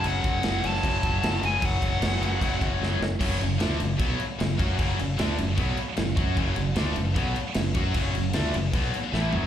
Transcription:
<<
  \new Staff \with { instrumentName = "Lead electric guitar" } { \time 4/4 \key fis \minor \tempo 4 = 152 fis''4. a''2 gis''8 | fis''2. r4 | r1 | r1 |
r1 | r1 | }
  \new Staff \with { instrumentName = "Distorted electric guitar" } { \clef bass \time 4/4 \key fis \minor <fis, cis fis>2 <fis, cis fis>8 <fis, cis fis>4 <fis, cis fis>8~ | <fis, cis fis>2 <fis, cis fis>8 <fis, cis fis>4 r8 | <fis, cis fis>8 <fis, cis>8 <d a d'>8 <fis, cis>8 <b, fis b>8 r8 <fis, cis>8 <fis cis' fis'>8 | <fis, cis fis>8 <fis, cis>8 <d a d'>8 <fis, cis>8 <b, fis b>8 r8 <fis, cis>8 <fis cis' fis'>8 |
<fis, cis fis>8 <fis, cis>8 <d a d'>8 <fis, cis>8 <b, fis b>8 r8 <fis, cis>8 <fis cis' fis'>8 | <fis, cis fis>8 <fis, cis>8 <d a d'>8 <fis, cis>8 <b, fis b>8 r8 <a, e a>8 <fis, cis fis>8 | }
  \new Staff \with { instrumentName = "Distorted electric guitar" } { \clef bass \time 4/4 \key fis \minor <fis, cis fis>2. <fis, cis fis>8 <fis, cis fis>8~ | <fis, cis fis>2. <fis, cis fis>8 r8 | <fis, cis fis>8 <fis, cis>8 <d a d'>8 <fis, cis>8 <b, fis b>8 r8 <fis, cis>8 <fis cis' fis'>8 | <fis, cis fis>8 <fis, cis>8 <d a d'>8 <fis, cis>8 <b, fis b>8 r8 <fis, cis>8 <fis cis' fis'>8 |
<fis, cis fis>8 <fis, cis>8 <d a d'>8 <fis, cis>8 <b, fis b>8 r8 <fis, cis>8 <fis cis' fis'>8 | <fis, cis fis>8 <fis, cis>8 <d a d'>8 <fis, cis>8 <b, fis b>8 r8 <a, e a>8 <fis, cis fis>8 | }
  \new Staff \with { instrumentName = "Distorted electric guitar" } { \clef bass \time 4/4 \key fis \minor <fis, cis fis>4. <fis, cis fis>2 <fis, cis fis>8~ | <fis, cis fis>4. <fis, cis fis>2 r8 | <fis, cis fis>8 <fis, cis>8 <d a d'>8 <fis, cis>8 <b, fis b>8 r8 <fis, cis>8 <fis cis' fis'>8 | <fis, cis fis>8 <fis, cis>8 <d a d'>8 <fis, cis>8 <b, fis b>8 r8 <fis, cis>8 <fis cis' fis'>8 |
<fis, cis fis>8 <fis, cis>8 <d a d'>8 <fis, cis>8 <b, fis b>8 r8 <fis, cis>8 <fis cis' fis'>8 | <fis, cis fis>8 <fis, cis>8 <d a d'>8 <fis, cis>8 <b, fis b>8 r8 <a, e a>8 <fis, cis fis>8 | }
  \new Staff \with { instrumentName = "Fingered electric bass" } { \clef bass \time 4/4 \key fis \minor fis,,8 fis,,8 fis,,8 fis,,8 fis,,8 fis,,8 fis,,8 fis,,8 | fis,,8 fis,,8 fis,,8 fis,,8 fis,,8 fis,,8 fis,,8 fis,,8 | fis,,8 fis,,8 d,8 fis,,8 b,,8 r8 fis,,8 fis,8 | fis,,8 fis,,8 d,8 fis,,8 b,,8 r8 fis,,8 fis,8 |
fis,,8 fis,,8 d,8 fis,,8 b,,8 r8 fis,,8 fis,8 | fis,,8 fis,,8 d,8 fis,,8 b,,8 r8 a,,8 fis,,8 | }
  \new DrumStaff \with { instrumentName = "Drums" } \drummode { \time 4/4 cymc8 <cymc bd>8 <cymc sn>8 cymc16 sn16 <cymc bd>8 <cymc bd>8 <cymc sn>8 cymc8 | <cymc bd>8 <cymc bd>8 <cymc sn>8 cymc8 <cymc bd>8 <cymc bd>8 sn8 sn8 | <cymc bd>8 cymc8 <cymc sn>8 cymc8 <cymc bd>8 cymc8 <cymc sn>8 <cymc bd>8 | <cymc bd>8 cymc8 <cymc sn>8 cymc8 <cymc bd>8 cymc8 <cymc sn>8 <cymc bd>8 |
<cymc bd>8 cymc8 <cymc sn>8 cymc8 <cymc bd>8 cymc8 <cymc sn>8 <cymc bd>8 | <cymc bd>8 cymc8 <cymc sn>8 cymc8 <cymc bd>8 cymc8 sn8 tomfh8 | }
>>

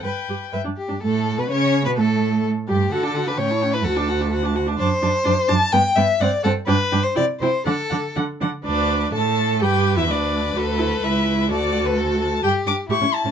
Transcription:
<<
  \new Staff \with { instrumentName = "Violin" } { \time 2/4 \key g \major \tempo 4 = 127 g''4 r4 | \key d \major a'8. b'16 cis''8. b'16 | a'4 r8 g'8 | fis''16 a''16 fis''16 a''16 g''16 a''16 g''16 a''16 |
fis''16 a''16 fis''16 a''16 fis''16 a''16 fis''16 a''16 | \key d \mixolydian a''8 a''8 a''8 a''8 | g''8 g''8 fis''8 fis''8 | g''8 g''8 g''8 g''8 |
fis''8 fis''8 fis''8 fis''8 | d''4 a''4 | g''8. e''16 d''4 | a'4 e''4 |
d''8. b'16 a'8 a''8 | \key g \lydian g''8 d'''8 cis'''8 a''8 | }
  \new Staff \with { instrumentName = "Violin" } { \time 2/4 \key g \major b'4 e''8 g'8 | \key d \major a'8. b'16 cis''8. b'16 | a'4 r8 g'8 | a'8. b'16 cis''8. b'16 |
a'4 r4 | \key d \mixolydian c''4. a''8 | g''8 e''8 d''8 a'8 | b'8. c''16 d''8 c''8 |
a'4 r4 | b'4 a'4 | b'4 b'4~ | b'2 |
a'2 | \key g \lydian g'4 e'4 | }
  \new Staff \with { instrumentName = "Viola" } { \time 2/4 \key g \major b'16 r16 g'16 r16 b'16 d'16 r16 d'16 | \key d \major a8. b16 cis'8. b16 | a4 r8 g8 | fis'16 d'16 fis'16 d'16 cis'16 e'16 cis'16 e'16 |
fis'16 d'16 fis'16 d'16 fis'16 d'16 fis'16 d'16 | \key d \mixolydian d'8 d'8 d'8 d'8 | b8 b8 c'8 c'8 | d'8 d'8 e'8 e'8 |
d'8 d'8 d'8 d'8 | d'4 a'4 | g'8. e'16 d'4 | fis'8 e'8 e'4 |
fis'4 fis'4 | \key g \lydian g'16 r16 d'16 r16 g'16 cis'16 r16 cis'16 | }
  \new Staff \with { instrumentName = "Cello" } { \clef bass \time 2/4 \key g \major g,16 r16 g,16 r16 g,16 g,16 r16 g,16 | \key d \major a,8. b,16 cis8. b,16 | a,4 r8 g,8 | d4 a,4 |
d,2 | \key d \mixolydian fis,8 fis,8 fis,8 fis,8 | g,8 g,8 g,8 g,8 | g,8 g,8 c8 c8 |
d8 d8 d8 d8 | d,4 a,4 | g,8. e,16 d,4 | d,4 cis,4 |
d,2 | \key g \lydian g,16 r16 g,16 r16 a,16 a,16 r16 a,16 | }
>>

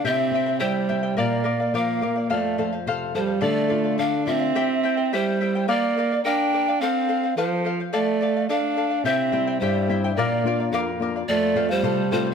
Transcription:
<<
  \new Staff \with { instrumentName = "Charango" } { \time 2/4 \key c \mixolydian \tempo 4 = 107 <e' g' c'' e'' g''>8 <e' c'' e'' g''>16 <e' c'' g''>16 <e' g' c'' e'' g''>8 <e' c'' e'' g''>16 <e' c'' g''>16 | <bes' d'' f''>8 <bes' d'' f''>16 <d'' f''>16 <bes' d'' f''>8 <bes' d'' f''>16 <d'' f''>16 | <a' c'' f''>8 <a' c'' f''>16 <c'' f''>16 <a' c'' f''>8 <a' c'' f''>16 <c'' f''>16 | <a' d'' f''>8 <a' d'' f''>16 <d'' f''>16 <a' d'' f''>8 <a' d'' f''>16 <d'' f''>16 |
<e' g' c'' e'' g''>8 <e' c'' e'' g''>16 <e' c'' g''>16 <e' g' c'' e'' g''>8 <e' c'' e'' g''>16 <e' c'' g''>16 | <bes' d'' f''>8 <bes' d'' f''>16 <d'' f''>16 <bes' d'' f''>8 <bes' d'' f''>16 <d'' f''>16 | <a' c'' f''>8 <a' c'' f''>16 <c'' f''>16 <a' c'' f''>8 <a' c'' f''>16 <c'' f''>16 | <a' d'' f''>8 <a' d'' f''>16 <d'' f''>16 <a' d'' f''>8 <a' d'' f''>16 <d'' f''>16 |
<e' g' c'' e'' g''>8 <e' c'' e'' g''>16 <e' c'' g''>16 <e' g' c'' e'' g''>8 <e' c'' e'' g''>16 <e' c'' g''>16 | <bes' d'' f''>8 <bes' d'' f''>16 <d'' f''>16 <bes' d'' f''>8 <bes' d'' f''>16 <d'' f''>16 | <a' c'' f''>8 <a' c'' f''>16 <c'' f''>16 <a' c'' f''>8 <a' c'' f''>16 <c'' f''>16 | }
  \new Staff \with { instrumentName = "Pan flute" } { \time 2/4 \key c \mixolydian e''4 c''4 | d''4 f''4 | d''8. r8. c''8 | d''4 f''8 e''8~ |
e''4 c''4 | d''4 g''4 | f''4 c''4 | d''4 f''4 |
e''4 c''4 | d''4 f''8 r8 | d''8. c''8. c''8 | }
  \new Staff \with { instrumentName = "Alto saxophone" } { \time 2/4 \key c \mixolydian c'4 g4 | bes4 bes4 | a8. r8. g8 | a4 d'8 c'8~ |
c'4 g4 | bes4 d'4 | c'4 f4 | a4 d'4 |
c'4 g4 | bes4 bes8 r8 | a8. g8. g8 | }
  \new Staff \with { instrumentName = "Nylon-string guitar" } { \time 2/4 \key c \mixolydian c8 c'8 g8 c'8 | bes,8 bes8 f8 bes8 | f,8 f8 c8 f8 | d8 f'8 a8 f'8 |
r2 | r2 | r2 | r2 |
c8 <g c' e'>8 g,8 <g c' e'>8 | bes,8 <bes d' f'>8 f,8 <bes d' f'>8 | f,8 <a c' f'>8 c8 <a c' f'>8 | }
>>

